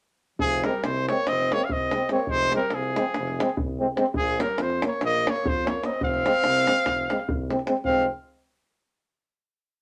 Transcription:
0.39 tuba F1, alto saxophone F3, trumpet G#4, davul low
0.64 alto saxophone G3, euphonium G#3, french horn C4, trumpet A#4, davul high
0.74 davul high
0.83 tuba C2, alto saxophone G#3, trumpet C5, davul high
0.97 davul high
1.08 euphonium G#3, alto saxophone A#3, french horn C4, trumpet C#5, davul high
1.26 tuba F1, alto saxophone C4, trumpet D#5, davul high
1.40 davul high
1.52 euphonium G#3, alto saxophone A#3, french horn C4, trumpet C#5, davul high
1.60 davul high
1.65 alto saxophone C#4, trumpet F5
1.69 tuba C2, alto saxophone C4, trumpet D#5, davul low
1.91 euphonium G#3, french horn C4, davul high
2.09 euphonium G#3, alto saxophone A#3, french horn C4, trumpet C#5, davul high
2.19 davul high
2.27 tuba F1, alto saxophone G#3, trumpet C5, davul low
2.52 alto saxophone G3, euphonium G#3, french horn C4, trumpet A#4, davul high
2.62 davul high
2.70 tuba C2, alto saxophone F3, trumpet G#4, davul high
2.83 davul high
2.96 euphonium G#3, french horn C4, davul high
3.14 tuba F1, davul high
3.27 davul high
3.39 euphonium G#3, french horn C4, davul high
3.49 davul high
3.57 tuba C2, davul low
3.80 euphonium G#3, french horn C4
3.97 euphonium G#3, french horn C4, davul high
4.06 davul high
4.14 tuba A#1, alto saxophone F3, trumpet G#4, davul low
4.40 alto saxophone G3, euphonium A#3, french horn C#4, trumpet A#4, davul high
4.49 davul high
4.58 tuba F2, alto saxophone F3, trumpet C5, davul high
4.70 davul high
4.82 alto saxophone A#3, euphonium A#3, french horn C#4, davul high
4.87 trumpet C#5
5.01 tuba A#1, alto saxophone A#3, trumpet D#5, davul high
5.14 davul high
5.25 euphonium A#3, alto saxophone A#3, french horn C#4, davul high
5.30 trumpet C#5
5.36 davul high
5.43 tuba F2, alto saxophone F3, davul low
5.48 trumpet C5
5.65 euphonium A#3, alto saxophone A#3, french horn C#4, trumpet C#5, davul high
5.83 euphonium A#3, alto saxophone C4, french horn C#4, trumpet D#5, davul high
5.93 davul high
6.00 tuba F1, alto saxophone C4, trumpet F5, davul low
6.14 davul high
6.24 euphonium G#3, french horn C4, davul high
6.34 davul high
6.44 tuba C2, davul high
6.57 davul high
6.65 euphonium G#3, french horn C4, davul high
6.78 davul high
6.85 tuba F1, davul high, davul low
7.09 euphonium G#3, french horn C4, davul high
7.19 davul high
7.29 tuba C2, davul low
7.49 euphonium G#3, french horn C4, davul high
7.59 davul high
7.67 euphonium G#3, french horn C4, davul high
7.77 davul high
7.85 tuba F1, euphonium G#3, french horn C4, alto saxophone C4, trumpet F5, davul low

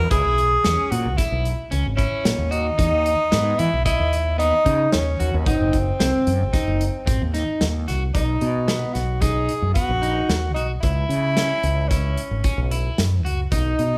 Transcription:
Already playing: tenor saxophone A#4
0.10 fretless electric bass C#2, clean electric guitar E4, tenor saxophone G#4, kick, closed hi-hat
0.25 fretless electric bass B1
0.38 closed hi-hat
0.64 fretless electric bass E2, clean electric guitar C#4, snare, closed hi-hat
0.91 fretless electric bass A#2, tenor saxophone F#4, closed hi-hat
1.06 fretless electric bass C#2
1.17 tenor saxophone E4, clean electric guitar E4, kick, snare, closed hi-hat
1.32 fretless electric bass B1
1.45 closed hi-hat
1.71 fretless electric bass C#2, clean electric guitar C#4, closed hi-hat
1.86 fretless electric bass G#1
1.96 tenor saxophone C#4, clean electric guitar E4, kick, closed hi-hat
2.25 fretless electric bass A#2, snare, closed hi-hat
2.38 fretless electric bass D#2
2.51 tenor saxophone D#4, clean electric guitar F#4, closed hi-hat
2.78 fretless electric bass E2, clean electric guitar D#4, kick, closed hi-hat
2.93 fretless electric bass D#2
3.06 closed hi-hat
3.32 fretless electric bass G#2, clean electric guitar B3, snare, closed hi-hat
3.58 fretless electric bass E3, tenor saxophone E4, closed hi-hat
3.73 fretless electric bass B1
3.85 tenor saxophone E4, clean electric guitar D#5, kick, closed hi-hat
4.00 fretless electric bass D#2
4.13 closed hi-hat
4.38 clean electric guitar B3, tenor saxophone D#4, closed hi-hat
4.65 fretless electric bass C#3, clean electric guitar D#4, kick, closed hi-hat
4.92 fretless electric bass D#2, tenor saxophone C#4, snare, closed hi-hat
5.20 fretless electric bass D#2, clean electric guitar F#4, closed hi-hat
5.34 fretless electric bass D#2
5.46 fretless electric bass G#1, tenor saxophone C4, clean electric guitar D#4, kick, closed hi-hat
5.60 fretless electric bass F#1
5.73 kick, closed hi-hat
6.00 fretless electric bass C2, clean electric guitar C4, snare, closed hi-hat
6.27 fretless electric bass F#2, closed hi-hat
6.41 fretless electric bass G#1
6.53 clean electric guitar D#4, kick, snare, closed hi-hat
6.67 fretless electric bass F#1
6.81 closed hi-hat
7.06 fretless electric bass G#1, clean electric guitar C4, kick, closed hi-hat
7.22 fretless electric bass D#2
7.34 clean electric guitar D#4, snare, closed hi-hat
7.61 fretless electric bass D#2, snare, closed hi-hat
7.88 fretless electric bass C2, clean electric guitar F#4, snare, closed hi-hat
8.14 fretless electric bass B1, tenor saxophone D#4, clean electric guitar D#4, kick, closed hi-hat
8.41 fretless electric bass B2, closed hi-hat
8.68 clean electric guitar B3, snare, closed hi-hat
8.94 fretless electric bass B1, tenor saxophone F#4, snare, closed hi-hat
9.21 clean electric guitar D#4, tenor saxophone G#4, kick, snare, closed hi-hat
9.49 closed hi-hat
9.62 fretless electric bass F#2
9.74 clean electric guitar B3, tenor saxophone F#4, kick, closed hi-hat
9.89 fretless electric bass A#1
10.02 clean electric guitar D#4, closed hi-hat
10.29 fretless electric bass D#2, snare, closed hi-hat
10.54 fretless electric bass B1, tenor saxophone D#4, clean electric guitar F#4, closed hi-hat
10.81 fretless electric bass C#2, tenor saxophone E4, clean electric guitar E4, kick, closed hi-hat
11.09 fretless electric bass C#3, closed hi-hat
11.37 clean electric guitar C#4, snare, closed hi-hat
11.63 fretless electric bass C#2, closed hi-hat
11.88 tenor saxophone C#4, clean electric guitar E4, kick, snare, closed hi-hat
12.17 closed hi-hat
12.31 fretless electric bass G#1
12.44 clean electric guitar C#4, kick, closed hi-hat
12.58 fretless electric bass B1
12.71 clean electric guitar E4, closed hi-hat
12.98 fretless electric bass F#2, snare, closed hi-hat
13.25 fretless electric bass C#2, clean electric guitar F#4, closed hi-hat
13.52 fretless electric bass B1, tenor saxophone D#4, clean electric guitar D#4, kick, closed hi-hat
13.79 fretless electric bass B2, closed hi-hat

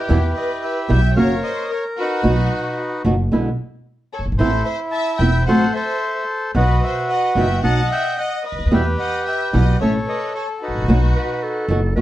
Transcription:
Already playing: bandoneon E4 B4, violin section G4
0.00 bandoneon G4
0.09 upright bass E2, nylon-string guitar B2 E3 G3 B3 E4
0.34 violin section B4, bandoneon D#5
0.62 violin section B4, bandoneon E5
0.88 upright bass B1, nylon-string guitar B2 E3 G3 B3 E4, violin section E5, bandoneon G5
1.15 upright bass F#1, nylon-string guitar C#3 F#3 A#3 C#4 F#4, violin section C#5, bandoneon C#5 F5
1.19 bandoneon A#4
1.43 violin section C5, bandoneon D#5
1.70 violin section A#4, bandoneon C#5
1.98 bandoneon D#4 F#4 B4, violin section F#4
2.23 upright bass B1, nylon-string guitar B2 F#3 B3 D#4 F#4
3.04 upright bass F#1, nylon-string guitar B2 F#3 B3 D#4 F#4
3.32 upright bass B1, nylon-string guitar B2 D3 G#3 B3 E4
4.13 violin section A4, bandoneon C#5
4.19 upright bass F#1
4.26 upright bass G1
4.32 upright bass G#1
4.38 upright bass A1, nylon-string guitar E3 B3 C4 E4, bandoneon E4 C5, violin section A4
4.65 violin section C5, bandoneon E5
4.91 violin section E5, bandoneon A5
5.18 upright bass E1, nylon-string guitar E3 B3 C4 E4, violin section E5, bandoneon G5
5.44 upright bass A1, nylon-string guitar F#3 A3, violin section C5, bandoneon F#5
5.48 nylon-string guitar C4 F#4, bandoneon A4 C5
5.72 bandoneon A4 C5 E5, violin section C5
6.55 upright bass B1, nylon-string guitar B2 F#3 B3 D#4 F#4, bandoneon F#4 B4 D#5, violin section B4
6.83 violin section C5, bandoneon E5
7.09 violin section D#5, bandoneon F#5
7.35 upright bass F#1, nylon-string guitar B2 F#3 B3 D#4 F#4, violin section E5, bandoneon G5
7.62 upright bass B1, nylon-string guitar B2 F#3 B3 D#4 F#4, bandoneon D#5 F#5 A5, violin section F#5
7.91 violin section E5, bandoneon G5
8.18 violin section D#5, bandoneon F#5
8.46 violin section B4, bandoneon D#5
8.52 upright bass C#2
8.59 upright bass D2
8.65 upright bass D#2
8.71 upright bass E2, nylon-string guitar B2 E3 G3 B3 E4, bandoneon G4 B4 E5, violin section B4
8.99 violin section D#5, bandoneon F#5
9.26 violin section E5, bandoneon G5
9.53 upright bass B1, nylon-string guitar B2 E3 G3 B3 E4, violin section D#5, bandoneon F#5
9.80 upright bass A1, nylon-string guitar E3 A3 C#4 E4, bandoneon A4 C#5 E5, violin section C#5
10.07 violin section B4, bandoneon D#5
10.35 violin section A4, bandoneon C#5
10.62 bandoneon D#4 F#4 B4, violin section F#4
10.68 upright bass G#1
10.75 upright bass A1
10.82 upright bass A#1
10.88 upright bass B1, nylon-string guitar B2 F#3 B3 D#4 F#4
11.16 clarinet B4
11.43 clarinet A4
11.68 upright bass F#1, nylon-string guitar B2 F#3 B3 D#4 F#4
11.96 upright bass E2, nylon-string guitar B2 E3 G3 B3 F#4, clarinet B4

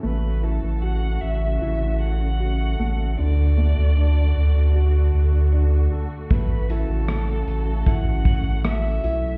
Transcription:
0.03 sub bass A1, string section C#3 A3 F#4, grand piano A3, violin B4
0.42 grand piano E4, violin A4
0.63 sub bass A1
0.82 grand piano F#4, violin F#5
1.21 sub bass A1, violin E5
1.60 sub bass A1, grand piano E4, violin E5
2.00 violin F#5
2.40 grand piano F#4
2.80 sub bass A1, grand piano A3
3.17 sub bass D2, string section D3 F#4, grand piano D3, violin D5
3.57 grand piano A3
3.78 sub bass D2
3.97 grand piano D4
4.37 sub bass D2
4.75 grand piano F#4
5.15 sub bass D2
5.53 grand piano D4
5.92 grand piano A4
6.30 sub bass A1, string section C#3, grand piano A3, violin B4, kick, closed hi-hat
6.70 grand piano E4, violin A4, closed hi-hat
6.89 sub bass A1
7.08 grand piano A3, cross-stick, closed hi-hat
7.47 sub bass A1, closed hi-hat
7.86 sub bass A1, grand piano E4, violin F#5, kick, cross-stick, closed hi-hat
8.25 kick, closed hi-hat
8.64 grand piano A3, violin E5, cross-stick, closed hi-hat
9.03 sub bass B1, grand piano E4, closed hi-hat

